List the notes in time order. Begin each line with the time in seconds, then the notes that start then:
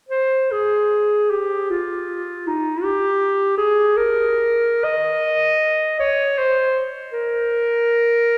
0.09 C5
0.51 G#4
1.30 G4
1.71 F4
2.47 D#4
2.83 G4
3.57 G#4
3.97 A#4
4.84 D#5
5.99 C#5
6.38 C5
7.13 A#4